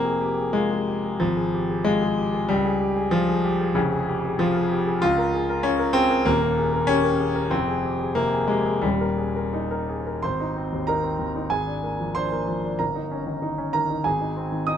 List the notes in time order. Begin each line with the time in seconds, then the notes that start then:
Already playing: F1 F2 A#3
0.05 G#4
0.21 G4
0.38 G#4
0.53 G#3 F4
0.71 G#4
0.88 G4
1.04 G#4
1.20 G#1 F3
1.37 G#4
1.54 G4
1.70 G#4
1.85 G#3 F4
2.02 G#4
2.18 G4
2.34 G#4
2.49 C#2 G3
2.65 G#4
2.81 G4
2.96 G#4
3.11 F3 F4
3.29 G#4
3.44 G4
3.61 G#4
3.75 F1 F2 C#3
3.92 G#4
4.09 G4
4.25 G#4
4.39 F3 F4
4.56 G#4
4.72 G4
4.87 G#4
5.02 C#2 F4
5.18 A#4
5.34 G#4
5.50 A#4
5.63 C#4 F4
5.79 A#4
5.93 C4 G#4
6.10 A#4
6.25 D#1 D#2 A#3
6.42 A#4
6.57 G#4
6.73 A#4
6.87 C#4 G4
7.04 A#4
7.20 G#4
7.36 A#4
7.51 F1 F2 C4
7.68 G#4
7.83 G4
7.99 G#4
8.15 C3 A#3
8.33 G#4
8.48 G#3 G4
8.66 G#4
8.82 D#1 D#2 G3
9.01 A#4
9.18 G#4
9.36 A#4
9.53 D#4
9.71 A#4
9.89 G#4
10.07 A#4
10.22 G#1 C5 C6
10.40 D#4
10.57 C4
10.73 D#2
10.87 D#4 A#4 A#5
11.03 C4
11.19 D#2
11.36 D#4
11.50 G#1 G#4 G#5
11.67 D4
11.83 A#3
12.00 F3
12.15 D4 C5 C6
12.32 A#3
12.47 F3
12.64 D4
12.79 G1 A#4 A#5
12.95 D#4
13.11 C#4
13.27 D#3
13.42 D#4
13.58 C#4
13.73 D#3 A#4 A#5
13.90 D#4
14.04 G#1 G#4 G#5
14.21 D#4
14.37 C4
14.52 D#3
14.67 D#4 D#5 D#6